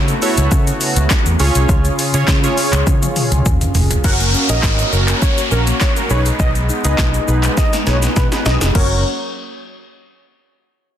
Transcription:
Already playing: fingered electric bass C#3, analog synth pad C#3 A3 B3 F#4, synth keys E4 F#4 A4 C#5
0.08 closed hi-hat, shaker
0.22 synth keys E4 F#4 A4 C#5, open hi-hat, shaker
0.38 fingered electric bass C#2, closed hi-hat, shaker
0.52 fingered electric bass C#3, kick, shaker
0.67 closed hi-hat, shaker
0.81 open hi-hat, shaker
0.96 fingered electric bass C#2, closed hi-hat, shaker
1.10 kick, snare, clap, shaker
1.26 fingered electric bass E2, closed hi-hat, shaker
1.40 fingered electric bass C#2, synth keys C#4 F4 G#4 C#5, analog synth pad C#4 F4 G#4, open hi-hat, shaker
1.55 fingered electric bass C2, closed hi-hat, shaker
1.69 fingered electric bass C#2, kick, shaker
1.85 closed hi-hat, shaker
1.99 open hi-hat, shaker
2.14 fingered electric bass C#3, synth keys C#4 F4 G#4 C#5, closed hi-hat, shaker
2.28 fingered electric bass C#3, kick, snare, clap, shaker
2.43 synth keys C#4 F4 G#4 C#5, closed hi-hat, shaker
2.58 open hi-hat, shaker
2.73 fingered electric bass C#2, clap, closed hi-hat, shaker
2.87 fingered electric bass C#3, kick, high tom, shaker
3.02 closed hi-hat, high tom, shaker
3.16 open hi-hat, mid tom, shaker
3.32 fingered electric bass C#2, closed hi-hat, mid tom, shaker
3.46 kick, mid tom, shaker
3.61 closed hi-hat, mid tom, shaker
3.75 fingered electric bass F1, floor tom, open hi-hat, shaker
3.91 closed hi-hat, floor tom, shaker
4.04 fingered electric bass F#1, synth pluck F#3, analog synth pad A#3 C#4 F#4, synth keys C#4 F#4 A#4, analog synth lead F#5, kick, crash, downlifter, shaker
4.20 synth pluck A#3, closed hi-hat, shaker
4.34 synth pluck C#4, shaker
4.49 fingered electric bass A#1, synth keys C#4 F#4 A#4, synth pluck F#4, analog synth lead D#5, closed hi-hat, shaker
4.63 fingered electric bass G#1, synth pluck C#4, kick, snare, clap, shaker
4.79 closed hi-hat, shaker
4.92 fingered electric bass F#1, synth keys C#4 F#4 A#4, shaker
5.08 clap, closed hi-hat, shaker
5.22 synth pluck C#4, analog synth lead C#5, kick, shaker
5.37 synth pluck F#4, closed hi-hat, shaker
5.51 fingered electric bass A#1, synth keys C#4 F#4 C#5, synth pluck C#4, analog synth lead A#4, shaker
5.67 synth pluck A#3, closed hi-hat, shaker
5.81 analog synth lead C#5, kick, snare, clap, shaker
5.96 synth pluck A#3, synth keys C#4 F#4 A#4, closed hi-hat, shaker
6.10 fingered electric bass B1, analog synth pad G#3 B3 D#4, synth keys D#4 G#4 B4, synth pluck D#4, analog synth lead C#5, shaker
6.26 synth pluck G#4, closed hi-hat, shaker
6.40 fingered electric bass B1, synth pluck G#3, analog synth lead D#5, kick, shaker
6.55 synth pluck B3, closed hi-hat, shaker
6.69 synth pluck D#4, shaker
6.84 fingered electric bass C#2, synth keys D#4 G#4 B4, synth pluck G#4, analog synth lead D#5, closed hi-hat, shaker
6.98 fingered electric bass B1, kick, snare, clap, shaker
7.14 closed hi-hat, shaker
7.27 fingered electric bass B1, synth keys D#4 G#4 B4, shaker
7.43 clap, closed hi-hat, shaker
7.57 synth pluck D#4, analog synth lead D#5, kick, snare, shaker
7.73 synth pluck G#4, snare, closed hi-hat, shaker
7.86 fingered electric bass B1, synth keys D#4 G#4 B4, synth pluck D#4, analog synth lead C#5, snare, shaker
8.02 synth pluck B3, snare, closed hi-hat, shaker
8.16 fingered electric bass B2, synth pluck G#3, analog synth lead B4, kick, snare, shaker
8.32 synth pluck B3, synth keys D#4 G#4 B4, snare, closed hi-hat, shaker
8.45 fingered electric bass B1, synth pluck D#4, analog synth lead D#5, snare, shaker
8.61 fingered electric bass F1, synth pluck G#4, snare, closed hi-hat, shaker
8.75 fingered electric bass F#1, synth pluck A#3 C#4 F#4, synth keys C#4 F#4 A#4, analog synth lead C#5, kick, crash

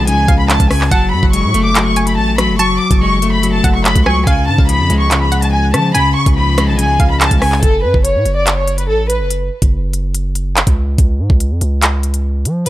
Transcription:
Already playing: 808-style bass B1, clean electric guitar F3 G#3
0.07 clean electric guitar C#3, violin section G#5, closed hi-hat
0.13 808-style bass C#2
0.28 808-style bass C#2, synth pluck F5, kick, closed hi-hat
0.39 violin section B5
0.49 violin section A5, clap, closed hi-hat
0.60 808-style bass C#2, kick, closed hi-hat
0.70 clean electric guitar C#3, violin section G#5, cross-stick, open hi-hat
0.81 clap
0.91 808-style bass F#1, clean electric guitar F#3, synth pluck F#5, violin section A5, kick, closed hi-hat
1.12 808-style bass F#2, violin section B5
1.23 808-style bass F#1, kick
1.33 clean electric guitar G#3, violin section C#6, closed hi-hat
1.44 808-style bass A2
1.54 808-style bass F#1, clean electric guitar A3, closed hi-hat
1.65 violin section D6
1.75 clean electric guitar F#3, clap, closed hi-hat
1.86 violin section C#6
1.96 synth pluck G#5, closed hi-hat
2.07 violin section B5, closed hi-hat
2.17 808-style bass A1, violin section A5
2.38 clean electric guitar F#3, violin section B5, cross-stick, closed hi-hat
2.49 808-style bass F#1
2.59 clean electric guitar F#3, synth pluck A5, violin section C#6, closed hi-hat
2.80 violin section D6
2.91 808-style bass F#1, kick, closed hi-hat
3.01 clean electric guitar G#3, violin section C#6
3.22 clean electric guitar A3, closed hi-hat
3.33 violin section B5
3.43 clean electric guitar F#3, closed hi-hat
3.54 violin section A5
3.64 808-style bass F#1, synth pluck F#5, kick, closed hi-hat
3.75 violin section C#6
3.85 violin section B5, clap, closed hi-hat
3.96 808-style bass C#2, kick, closed hi-hat
4.06 clean electric guitar F#3, synth pluck G#5, violin section C#6, cross-stick
4.27 808-style bass C#2, clean electric guitar C#3, synth pluck F5, violin section G#5, kick, closed hi-hat
4.48 808-style bass G#2, violin section A5
4.58 808-style bass C#2, kick
4.69 clean electric guitar F3, violin section B5, closed hi-hat
4.80 808-style bass F2
4.90 808-style bass C#2, clean electric guitar G#3, closed hi-hat
5.00 violin section C#6
5.11 clean electric guitar C#3, clap, closed hi-hat
5.21 violin section B5
5.32 synth pluck F#5, closed hi-hat
5.42 violin section A5, closed hi-hat
5.53 violin section G#5
5.74 clean electric guitar C#3, 808-style bass F3, violin section A5, cross-stick, closed hi-hat
5.95 808-style bass C#2, clean electric guitar C#3, synth pluck G#5, violin section B5, closed hi-hat
6.16 violin section C#6
6.26 808-style bass C#2, kick, closed hi-hat
6.37 clean electric guitar F3, violin section B5
6.58 clean electric guitar G#3, cross-stick, closed hi-hat
6.68 808-style bass B1, violin section A5
6.79 clean electric guitar C#3, violin section G#5, closed hi-hat
6.84 808-style bass C#2
7.00 808-style bass C#2, synth pluck F5, kick, closed hi-hat
7.10 violin section B5
7.21 violin section A5, clap, closed hi-hat
7.31 808-style bass C#2, kick, closed hi-hat
7.42 clean electric guitar C#3, violin section G#5, cross-stick, open hi-hat
7.52 clap
7.63 808-style bass F#1, violin section A4, kick, closed hi-hat
7.84 808-style bass F#2, violin section B4
7.94 808-style bass F#1, kick
8.05 violin section C#5, closed hi-hat
8.15 808-style bass A2
8.26 808-style bass F#1, closed hi-hat
8.36 violin section D5
8.47 clap, closed hi-hat
8.57 violin section C#5
8.68 closed hi-hat
8.78 violin section B4, closed hi-hat
8.89 808-style bass A1, violin section A4
9.10 violin section B4, closed hi-hat
9.20 808-style bass F#1
9.31 closed hi-hat
9.62 808-style bass F#1, kick, closed hi-hat
9.93 closed hi-hat
10.15 closed hi-hat
10.35 closed hi-hat
10.56 clap, closed hi-hat
10.67 808-style bass C#2, kick, closed hi-hat
10.98 808-style bass C#2, kick, closed hi-hat
11.19 808-style bass G#2
11.30 808-style bass C#2, kick
11.40 closed hi-hat
11.51 808-style bass F2
11.61 808-style bass C#2, closed hi-hat
11.82 clap, closed hi-hat
12.03 closed hi-hat
12.14 closed hi-hat
12.45 808-style bass F3, closed hi-hat
12.66 808-style bass C#2, closed hi-hat

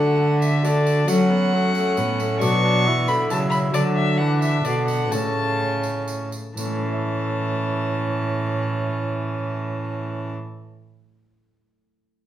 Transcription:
Already playing: cello D3, harp D3 A3 D4 F#4 A4, viola A3, cor anglais D4, violin F#5
0.42 violin E5, tambourine
0.61 viola A3, harp D4 F#4 A4, cor anglais D4, tambourine
0.65 violin D5
0.87 tambourine
1.05 harp F#3 C#4 F#4 A4, viola A3, cor anglais C#4, violin F#5, tambourine
1.09 cello F#3
1.30 viola B3
1.53 viola A3, cor anglais C#4
1.75 viola A3, tambourine
1.97 harp A2, cello A2, viola B3, tambourine
2.20 viola A3, tambourine
2.38 cello B2, harp B2 F#4 B4 D5, viola F#3, violin C#6, tambourine
2.42 cor anglais D4
2.63 cor anglais D4
2.86 viola E3, cor anglais E4
3.08 viola D3, violin B5, tambourine
3.30 cello C#3, harp C#3, viola F#3, violin A5, tambourine
3.50 violin B5, tambourine
3.71 cello D3, harp D3 D4 F#4 A4, viola F#3, violin D5, tambourine
3.75 cor anglais D4
3.95 violin E5
4.18 viola E3, cor anglais D4, violin F#5
4.41 violin E5, tambourine
4.64 cello B2, harp B2, viola D3, violin D5, tambourine
4.87 violin F#5, tambourine
5.09 cello A2, harp A2 C#4 E4 A4, viola C#3, cor anglais C#4, violin A5, tambourine
5.83 tambourine
6.08 tambourine
6.32 tambourine
6.56 cello A2, harp A2, viola E3, cor anglais C#4, violin A5, tambourine
6.65 harp A3
6.72 harp C#4
6.79 harp E4
6.86 harp A4
6.93 harp E5

